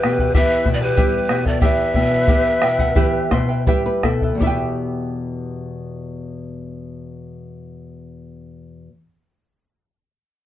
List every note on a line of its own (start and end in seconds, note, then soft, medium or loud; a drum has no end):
0.00 1.58 E2 medium
0.00 0.34 B2 medium
0.00 0.34 G4 medium
0.00 0.35 B4 loud
0.00 bombo rim medium
0.04 0.20 E4 medium
0.04 0.19 B4 medium
0.04 0.19 E5 medium
0.04 0.19 G5 medium
0.19 0.33 E4 soft
0.19 0.34 B4 medium
0.19 0.34 G5 medium
0.19 bombo low medium
0.34 0.65 E3 medium
0.34 0.66 E4 medium
0.34 0.66 G4 medium
0.34 0.72 B4 loud
0.34 0.66 B4 medium
0.34 0.65 E5 medium
0.34 0.72 E5 loud
0.34 0.66 G5 loud
0.34 bombo low medium
0.34 shaker loud
0.65 0.96 B2 medium
0.65 0.82 E4 medium
0.65 0.82 B4 medium
0.65 0.81 E5 medium
0.65 0.81 G5 medium
0.65 bombo low medium
0.73 0.83 B4 medium
0.73 0.84 D5 medium
0.81 0.96 E4 soft
0.81 1.47 G4 medium
0.81 1.49 B4 loud
0.81 0.97 B4 medium
0.81 0.97 G5 medium
0.97 1.28 G3 medium
0.97 1.29 E4 medium
0.97 1.29 G4 medium
0.97 1.29 B4 medium
0.97 1.29 E5 medium
0.97 1.29 G5 medium
0.97 bombo low medium
0.97 shaker loud
1.29 1.61 B2 medium
1.29 1.46 E4 medium
1.29 1.45 B4 medium
1.29 1.46 E5 medium
1.29 1.44 G5 medium
1.29 bombo rim medium
1.46 1.61 E4 soft
1.46 1.61 A4 medium
1.46 1.61 B4 soft
1.46 1.61 D5 medium
1.46 1.61 G5 medium
1.46 bombo low medium
1.61 3.31 E2 medium
1.61 1.94 E4 medium
1.61 1.94 G4 medium
1.61 3.63 B4 medium
1.61 1.94 B4 medium
1.61 1.94 E5 medium
1.61 3.63 E5 loud
1.61 1.94 G5 medium
1.61 bombo low medium
1.61 shaker loud
1.94 2.27 B2 medium
1.94 2.10 E4 medium
1.94 2.10 B4 medium
1.94 2.11 E5 medium
1.94 2.09 G5 medium
1.94 bombo low medium
2.10 2.27 E4 soft
2.10 2.28 B4 medium
2.10 2.27 G5 medium
2.27 2.60 B3 medium
2.27 2.61 E4 medium
2.27 2.62 G4 medium
2.27 2.62 B4 medium
2.27 2.60 E5 medium
2.27 2.61 G5 medium
2.27 bombo low medium
2.27 shaker loud
2.61 2.95 B2 medium
2.61 2.79 E4 medium
2.61 2.79 B4 medium
2.61 2.79 E5 medium
2.61 2.78 G5 medium
2.61 2.79 G5 medium
2.61 bombo rim medium
2.79 2.95 E4 medium
2.79 2.95 B4 medium
2.79 2.95 F#5 medium
2.79 2.95 G5 medium
2.79 bombo low medium
2.95 3.30 E3 medium
2.95 3.30 E4 loud
2.95 3.31 G4 medium
2.95 3.31 B4 loud
2.95 3.28 E5 medium
2.95 3.30 E5 loud
2.95 3.31 G5 loud
2.95 bombo low medium
2.95 shaker loud
3.31 3.66 B2 medium
3.31 3.49 E4 medium
3.31 3.48 B4 medium
3.31 3.64 C5 medium
3.31 3.49 E5 medium
3.31 3.48 G5 medium
3.31 bombo rim medium
3.31 bombo low medium
3.49 3.66 E4 medium
3.49 3.67 B4 medium
3.49 3.67 G5 medium
3.67 4.03 G3 medium
3.67 4.03 E4 medium
3.67 4.04 G4 medium
3.67 3.84 B4 medium
3.67 4.04 B4 loud
3.67 4.03 E5 medium
3.67 4.04 G5 loud
3.67 bombo low medium
3.67 shaker medium
3.86 4.03 B4 medium
4.03 4.35 B2 medium
4.03 4.23 E4 medium
4.03 4.38 A4 medium
4.03 4.22 B4 medium
4.03 4.22 E5 medium
4.03 4.21 G5 medium
4.03 bombo rim medium
4.03 bombo low medium
4.21 4.42 E4 medium
4.21 4.42 B4 medium
4.21 4.41 G5 medium
4.21 bombo low medium
4.35 8.88 E2 medium
4.35 8.89 B2 medium
4.39 8.90 B3 medium
4.39 4.46 E4 medium
4.39 8.96 E4 medium
4.39 8.95 G4 medium
4.39 8.96 E5 medium
4.39 bombo low medium
4.39 shaker medium
4.44 8.93 G4 soft
4.44 8.97 B4 loud
4.44 8.94 E5 medium
4.44 8.98 G5 loud